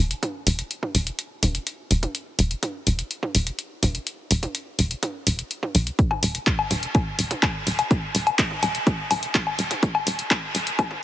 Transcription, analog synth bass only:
0.00 E1
0.47 E1
0.95 E1
1.43 E1
1.91 E1
2.39 E1
2.87 E1
3.35 E1
3.83 E1
4.31 E1
4.79 E1
5.27 E1
5.75 B1
6.23 E1
6.71 E1
7.19 E1
7.67 E1
8.15 E1
8.63 E1
9.11 E1
9.59 E1
10.07 E1
10.55 E1

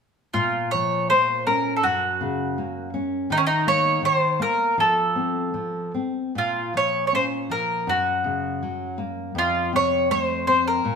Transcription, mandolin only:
0.34 F4
0.71 C#5
1.10 C5
1.47 A#4
1.76 A4
1.83 F#4
3.32 D#4
3.38 C#4
3.47 D#4
3.68 C#5
4.05 C5
4.42 A#4
4.80 A4
6.38 F4
6.77 C#5
7.07 C#5
7.15 C5
7.51 A#4
7.89 F#4
9.38 F4
9.76 C#5
10.11 C5
10.47 C5
10.67 A#4

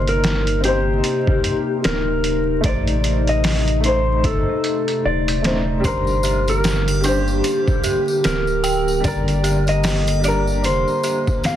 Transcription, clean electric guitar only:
0.09 A#4
0.65 G4
1.85 A#4
2.65 D5
3.29 D#5
3.86 C5
4.26 A4
5.05 D5
5.85 C5
6.50 A#4
7.05 G4
8.25 A#4
9.05 D5
9.69 D#5
10.25 D5
10.65 C5
11.46 F5

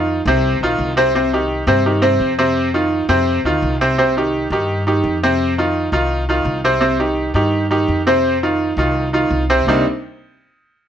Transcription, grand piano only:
Already playing: D#3 D#4 F4
0.27 C3 C4 C5
0.63 D#3 D#4 F4
0.97 C3 C4 C5
1.15 C3 C4 C5
1.33 D#3 D#4 G4
1.67 C3 C4 C5
1.86 D#3 D#4 G4
2.02 C3 C4 C5
2.39 C3 C4 C5
2.74 D#3 D#4 F4
3.09 C3 C4 C5
3.45 D#3 D#4 F4
3.81 C3 C4 C5
3.98 C3 C4 C5
4.17 D#3 D#4 G4
4.52 D#3 D#4 G4
4.87 D#3 D#4 G4
5.23 C3 C4 C5
5.58 D#3 D#4 F4
5.93 D#3 D#4 F4
6.29 D#3 D#4 F4
6.64 C3 C4 C5
6.80 C3 C4 C5
6.99 D#3 D#4 G4
7.35 D#3 D#4 G4
7.70 D#3 D#4 G4
8.07 C3 C4 C5
8.43 D#3 D#4 F4
8.78 D#3 D#4 F4
9.13 D#3 D#4 F4
9.50 C3 C4 C5
9.68 C3 G3 A#3 C4 D4 D#4

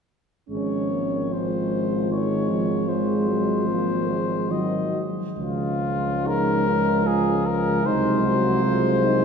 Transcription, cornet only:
0.49 C#5
1.33 C5
2.12 C#5
2.89 C5
4.51 D#5
5.39 F4
6.27 A#4
7.07 G#4
7.46 A#4
7.86 C5

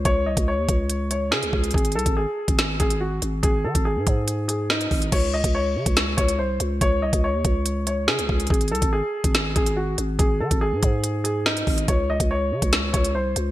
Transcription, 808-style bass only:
0.05 C#2
0.26 C2
0.37 C#2
0.58 D#2
0.69 C#2
1.32 C#3
1.43 C#2
1.53 C#2
1.74 G#1
1.95 C2
2.06 G#1
2.48 G#1
2.80 G#1
3.22 G#1
3.43 G#1
3.64 D#3
3.75 G#1
3.96 G#2
4.07 G#2
4.91 G#1
5.12 C#2
5.44 C#2
5.76 C#3
5.86 C#2
6.18 C#2
6.39 C2
6.60 C#2
6.81 C#2
7.02 C2
7.13 C#2
7.34 D#2
7.45 C#2
8.08 C#3
8.19 C#2
8.29 C#2
8.50 G#1
8.71 C2
8.82 G#1
9.24 G#1
9.56 G#1
9.98 G#1
10.19 G#1
10.40 D#3
10.51 G#1
10.72 G#2
10.83 G#2
11.67 G#1
11.88 C#2
12.20 C#2
12.52 C#3
12.62 C#2
12.94 C#2
13.15 C2
13.36 C#2

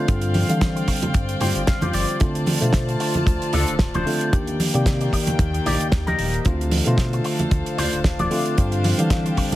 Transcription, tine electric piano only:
0.08 D3 G3 C4
0.48 D3 G3 C4 F5
2.20 D3 A3 C4 F4
2.60 D3 A3 F4 C5
4.06 D3 A3 C4 F4
4.32 D#3 A#3 D4 G4
4.73 D#3 A#3 G4 D5
6.45 D3 A3 C4 F4
6.86 D3 A3 F4 C5
8.31 D3 A3 C4 F4
8.57 D3 G3 C4 F4
8.98 D3 G3 C4 F5

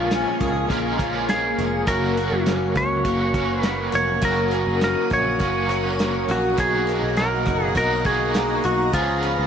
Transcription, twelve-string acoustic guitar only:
Already playing: F3 A#3 G#4
0.12 C#4
0.41 G#4
0.70 A#3
1.00 C#4
1.29 A#3
1.59 G#4
1.88 F#3 F#4
2.17 A#3
2.46 C#4
2.76 F#4
3.05 A#3
3.34 C#4
3.63 A#3
3.92 F#4
4.22 F#3 F#4
4.51 A#3
4.81 C#4
5.10 F#4
5.40 A#3
5.69 C#4
5.99 A#3
6.29 F#4
6.58 F#3 F#4
6.87 A#3
7.17 D#4
7.46 F#4
7.75 A#3
8.05 D#4
8.34 A#3
8.64 F#4
8.93 F3 G#4
9.23 B3

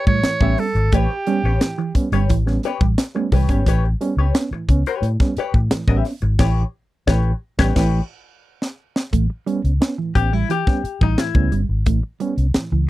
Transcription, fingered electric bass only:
0.07 A2
0.23 muted fingered electric bass stroke
0.40 A1
0.75 G#1
0.93 A1
1.44 A1
1.95 muted fingered electric bass stroke
2.12 G1
2.30 A1
2.81 A1
3.32 C2
3.49 G#1
3.67 A1
4.17 C#2
4.51 muted fingered electric bass stroke
4.69 C#2
5.02 A2
5.37 muted fingered electric bass stroke
5.54 A2
5.71 muted fingered electric bass stroke
5.87 A1
6.22 G#1
6.39 A1
7.08 A1
7.59 A1
7.76 A1
9.13 A1
9.64 C#2
10.15 A1
10.84 muted fingered electric bass stroke
11.01 A1
11.34 C#2
11.52 G1
11.69 G#1
11.87 A1
12.37 C2
12.55 muted fingered electric bass stroke
12.72 C#2

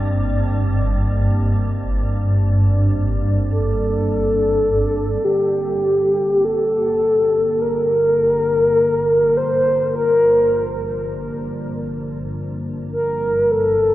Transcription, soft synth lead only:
3.50 A4
5.24 G4
6.45 A4
7.61 A#4
9.37 C5
9.95 A#4
12.93 A#4
13.51 A4

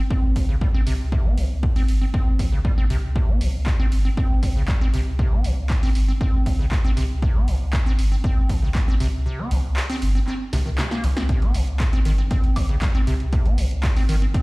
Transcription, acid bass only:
0.10 C4
0.36 D#3
0.49 C#3
0.61 G3
0.74 C4
0.87 C3
1.12 C3
1.25 C4
1.38 D#3
1.76 C4
2.01 C4
2.14 C4
2.39 D#3
2.52 C#3
2.65 G3
2.78 C4
2.90 C3
3.16 C3
3.29 C4
3.41 D#3
3.79 C4
4.05 C4
4.17 C4
4.43 D#3
4.56 C#3
4.68 G3
4.81 C4
4.94 C3
5.19 C3
5.32 C4
5.45 D#3
5.83 C4
6.08 C4
6.21 C4
6.46 D#3
6.59 C#3
6.72 G3
6.84 C4
6.97 C3
7.22 C3
7.35 C4
7.48 D#3
7.86 C4
8.12 C4
8.24 C4
8.49 D#3
8.62 C#3
8.75 G3
8.88 C4
9.00 C3
9.26 C3
9.39 C4
9.51 D#3
9.90 C4
10.15 C4
10.28 C4
10.53 C3
10.66 D#3
10.78 C3
10.91 A#3
11.04 C3
11.17 C4
11.29 C3
11.42 C4
11.55 D#3
11.93 C4
12.05 D#3
12.18 C4
12.31 C4
12.56 D#3
12.69 C#3
12.82 G3
12.95 C4
13.07 C3
13.33 C3
13.46 C4
13.58 D#3
13.96 C4
14.09 D#3
14.22 C4
14.34 C4

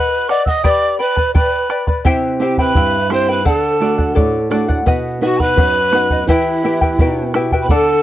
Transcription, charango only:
Already playing: B4 D#5 F#5
0.29 B4 D#5 F#5
0.47 D#5 F#5
0.64 G4 B4 D5 G5 B5
0.99 B4 D5 G5 B5
1.17 B4 D5 B5
1.35 B4 D5 G5 B5
1.70 B4 D5 G5 B5
1.87 B4 D5 B5
2.05 E4 G4 C5 E5 G5
2.40 E4 C5 E5 G5
2.59 E4 C5 G5
2.76 E4 E5 G5
3.10 E4 C5 E5 G5
3.29 E4 C5 G5
3.45 A4 D5 F#5
3.80 A4 D5 F#5
3.98 D5 F#5
4.15 A4 D5 F#5
4.51 A4 D5 F#5
4.69 D5 F#5
4.86 B4 D#5 F#5
5.22 B4 D#5 F#5
5.40 D#5 F#5
5.57 B4 D#5 F#5
5.94 B4 D#5 F#5
6.11 D#5 F#5
6.28 E4 G4 B4 E5 G5
6.64 E4 B4 E5 G5
6.81 E4 B4 G5
7.00 E4 B4 E5 G5
7.34 E4 B4 E5 G5
7.53 E4 B4 G5
7.70 A4 D5 F#5

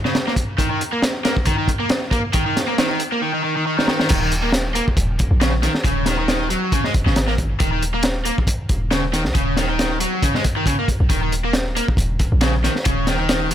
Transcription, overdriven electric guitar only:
0.06 C#3
0.27 A#3
0.59 D#3
0.71 D#3
0.93 A#3
1.25 A#3
1.47 D#3
1.58 D#3
1.80 A#3
2.13 A#3
2.34 D#3
2.46 D#3
2.68 A#3
2.78 D#3
2.90 D#3
3.12 A#3
3.22 D#3
3.34 D#3
3.44 D#3
3.56 D#3
3.66 D#3
3.78 D#3
3.89 D#3
4.01 D#3
4.10 D#3
4.22 D#3
4.44 A#3
4.75 A#3
5.41 C#3
5.63 D#3
5.85 C#3
6.07 D#3
6.19 D#3
6.51 F#3
6.73 C#3
6.85 G#3
7.06 C#3
7.28 A#3
7.60 D#3
7.72 D#3
7.95 A#3
8.26 A#3
8.92 C#3
9.13 D#3
9.35 C#3
9.57 D#3
9.69 D#3
10.01 F#3
10.23 C#3
10.35 G#3
10.56 D#3
10.67 C#3
10.79 A#3
11.11 D#3
11.23 D#3
11.45 A#3
11.76 A#3
12.42 C#3
12.64 D#3
12.86 C#3
13.08 D#3
13.20 D#3

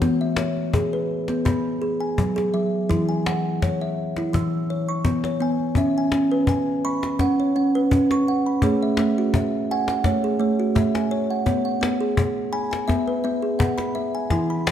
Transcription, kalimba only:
Already playing: C#5
0.02 B3
0.21 E5
0.38 C#5
0.74 G#4
0.93 B4
1.29 B3
1.45 B3 B5
1.82 G#4
2.00 G#5
2.18 F#3
2.36 G#4
2.54 F#3 E5
2.90 E3 E4
3.09 G#5
3.26 F#5
3.62 C#5
3.81 E5
4.18 E4
4.33 E3 E6
4.70 C#5
4.89 C#6
5.05 B3
5.25 C#5
5.40 B3 G#5
5.77 C#4 E5
5.98 G#5
6.12 C#4
6.31 B4
6.49 G#5
6.85 B5 C#6
7.04 B5
7.20 C#4 F#5
7.40 C#5
7.56 C#4 F#5
7.75 B4
7.91 C#4
8.11 C#6
8.28 F#5
8.46 B5
8.63 A3 G#4 C#5
8.83 E5
8.99 A3
9.18 F#4
9.35 E5
9.71 F#5 G#5
9.90 F#5
10.05 A3 C#5
10.24 G#4
10.40 A3 C#5
10.60 F#4
10.75 A3 E5
10.95 G#5
11.11 C#5
11.31 F#5
11.46 B3 C#5
11.65 F#5
11.81 B3
12.01 G#4
12.53 G#5 B5
12.71 G#5
12.88 B3 E5
13.07 B4
13.24 B3 E5
13.42 G#4
13.59 B3 F#5
13.78 B5
13.95 E5
14.15 G#5
14.31 E3 E4 G#5
14.50 B5
14.67 E3

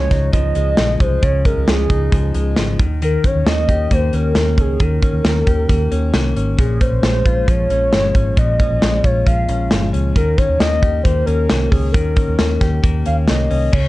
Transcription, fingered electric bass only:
0.11 C#2
0.33 C#2
0.56 C#2
0.78 A#1
1.00 C2
1.23 C#2
1.57 C#2
1.68 C#2
1.90 C#2
2.12 C#2
2.35 C#2
2.56 G#1
2.80 D#2
3.35 D#2
3.46 D#2
3.69 D#2
3.91 D#2
4.13 D#2
4.36 D#2
4.58 C#2
4.80 D#2
5.13 D#2
5.24 D#2
5.47 D#2
5.69 D#2
5.92 D#2
6.13 C2
6.36 G#1
6.58 A#1
6.91 A#1
7.03 A#1
7.26 A#1
7.48 A#1
7.70 A#1
7.92 G1
8.15 G#1
8.37 A#1
8.71 A#1
8.82 A#1
9.04 A#1
9.27 A#1
9.49 A#1
9.71 G1
9.93 C#2
10.16 D#2
10.49 D#2
10.60 D#2
10.83 D#2
11.05 D#2
11.27 D#2
11.51 C2
11.72 C#2
11.95 D#2
12.28 D#2
12.39 D#2
12.61 D#2
12.84 D#2
13.07 D#2
13.30 C2
13.52 C2
13.73 C#2

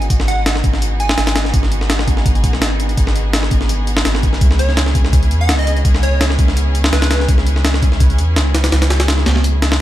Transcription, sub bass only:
0.10 G#1
0.64 G#1
1.18 G#1
1.54 G#1
2.44 B1
2.61 G#1
2.98 G#1
3.51 G#1
4.05 G#1
4.41 C#2
5.31 E2
5.49 C#2
5.85 C#2
6.39 C#2
6.92 C#2
7.29 C#2
8.18 E2
8.36 C#2
8.72 C#2
9.26 C#2

